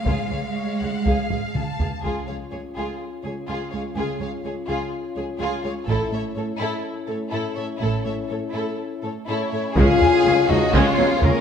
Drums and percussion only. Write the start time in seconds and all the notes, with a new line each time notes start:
0.06 taiko
1.06 taiko
1.30 taiko low-mid
1.55 taiko mid
1.79 taiko low
2.05 taiko
5.88 taiko
9.76 taiko, tam-tam
10.01 taiko low
10.49 taiko low
10.74 taiko
11.22 taiko low